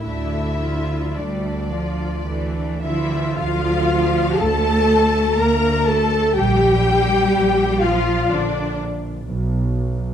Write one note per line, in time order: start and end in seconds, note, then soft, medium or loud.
0.03 1.03 D2 soft
0.03 1.04 D3 soft
0.03 0.57 A3 soft
0.03 0.57 D4 soft
0.03 1.14 E4 soft
0.03 1.14 E5 medium
0.61 1.17 F3 soft
0.61 1.16 F4 soft
1.16 2.13 D2 soft
1.16 1.68 G3 medium
1.16 1.72 A3 soft
1.16 2.82 D4 soft
1.16 1.72 D4 soft
1.16 2.83 D5 soft
1.71 2.26 F3 soft
1.71 2.26 F4 soft
2.26 3.24 D2 soft
2.26 2.81 E3 soft
2.26 2.78 A3 soft
2.26 2.78 D4 soft
2.82 3.37 D3 soft
2.82 3.33 E3 medium
2.82 3.37 F3 soft
2.82 3.33 E4 medium
2.82 3.36 F4 soft
2.82 3.33 E5 medium
3.36 4.27 D2 medium
3.36 4.39 F3 medium
3.36 4.39 F4 medium
3.36 4.39 F5 medium
4.38 5.26 D2 medium
4.38 5.39 A3 medium
4.38 5.39 A4 medium
4.38 5.36 A5 medium
4.38 5.39 A5 medium
5.38 6.24 D2 medium
5.38 5.88 A#3 medium
5.38 5.87 A#4 medium
5.38 5.87 A#5 medium
5.86 6.36 A3 medium
5.86 6.35 A4 medium
5.86 6.35 A5 medium
5.86 6.36 A5 medium
6.35 7.22 A#1 medium
6.35 7.79 G3 medium
6.35 7.78 G4 medium
6.35 7.81 G5 medium
6.35 7.79 G5 medium
7.33 8.19 A#1 medium
7.80 8.31 F3 medium
7.80 8.30 F4 medium
7.80 8.29 F5 medium
7.80 8.30 F5 medium
8.30 9.16 A#1 medium
8.30 8.79 D3 medium
8.30 8.79 D4 medium
8.30 8.79 D5 medium
8.30 8.80 D5 medium
9.27 10.13 B1 medium